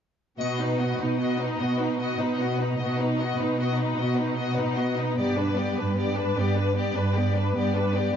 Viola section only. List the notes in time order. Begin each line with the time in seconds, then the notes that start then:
0.40 B3
0.60 D#4
0.80 B3
1.00 D#4
1.20 B3
1.40 D#4
1.60 B3
1.80 D#4
2.00 B3
2.19 D#4
2.39 B3
2.60 D#4
2.80 B3
3.00 D#4
3.20 B3
3.40 D#4
3.60 B3
3.80 D#4
4.00 B3
4.19 D#4
4.39 B3
4.58 D#4
4.78 B3
4.97 D#4
5.17 B3
5.37 D4
5.57 B3
5.77 D4
5.97 B3
6.17 D4
6.37 B3
6.57 D4
6.76 B3
6.96 D4
7.16 B3
7.35 D4
7.56 B3
7.76 D4
7.96 B3